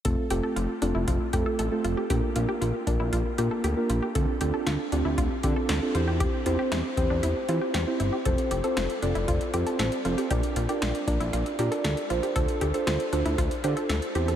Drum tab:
HH |x-x-x-x-x-x-x-x-|x-x-x-x-x-x-x-x-|x-x-x-x-x-x-x-x-|x-x-x-x-x-x-x-x-|
SD |----------------|----------------|----o-------o---|----o-------o---|
BD |o-------o-o-----|o-----o-o-------|o-------o-o-----|o-----o---------|

HH |xxxxxxxxxxxxxxxx|xxxxxxxxxxxxxxxx|xxxxxxxxxxxxxxxx|
SD |----o-------o---|----o-------o---|----o-------o---|
BD |o-------o-------|o-----o---------|o-------o-------|